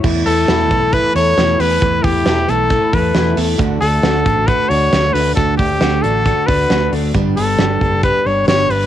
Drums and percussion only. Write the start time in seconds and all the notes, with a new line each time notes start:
0.04 kick, crash
0.26 hi-hat pedal, open hi-hat
0.48 snare, hi-hat pedal, open hi-hat
0.71 kick, hi-hat pedal, open hi-hat
0.93 kick, hi-hat pedal, open hi-hat
1.16 hi-hat pedal, open hi-hat
1.38 snare, hi-hat pedal, open hi-hat
1.60 hi-hat pedal, open hi-hat
1.82 kick
2.04 kick, hi-hat pedal, open hi-hat
2.26 snare, hi-hat pedal, open hi-hat
2.49 hi-hat pedal, open hi-hat
2.70 kick, hi-hat pedal, open hi-hat
2.93 kick, hi-hat pedal, open hi-hat
3.15 snare, hi-hat pedal, open hi-hat
3.37 hi-hat pedal, open hi-hat
3.59 kick, hi-hat pedal, open hi-hat
3.81 hi-hat pedal, open hi-hat
4.03 snare, hi-hat pedal, open hi-hat
4.26 kick, hi-hat pedal, open hi-hat
4.48 kick, hi-hat pedal, open hi-hat
4.71 hi-hat pedal, open hi-hat
4.93 snare, hi-hat pedal, open hi-hat
5.15 hi-hat pedal, open hi-hat
5.37 kick, hi-hat pedal, open hi-hat
5.59 kick, hi-hat pedal, open hi-hat
5.81 snare, hi-hat pedal, open hi-hat
6.04 hi-hat pedal, open hi-hat
6.26 kick, hi-hat pedal, open hi-hat
6.48 kick, hi-hat pedal, open hi-hat
6.70 snare, hi-hat pedal, open hi-hat
6.93 hi-hat pedal, open hi-hat
7.14 kick, hi-hat pedal, open hi-hat
7.37 hi-hat pedal, open hi-hat
7.59 snare
7.81 kick, hi-hat pedal, open hi-hat
8.03 kick, hi-hat pedal, open hi-hat
8.26 hi-hat pedal, open hi-hat
8.48 snare, hi-hat pedal, open hi-hat
8.70 hi-hat pedal, open hi-hat